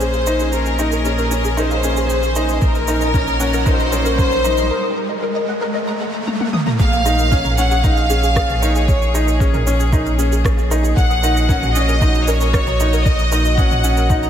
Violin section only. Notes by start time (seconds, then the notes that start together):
0.02 C5
0.55 A#4
1.58 C5
2.10 C5
2.55 C5
2.61 A#4
3.67 C5
4.19 C5
6.81 F5
7.58 F#5
7.84 F5
8.63 C#5
10.97 F#5
11.75 D#5
12.26 C#5
13.05 D#5
13.58 F#5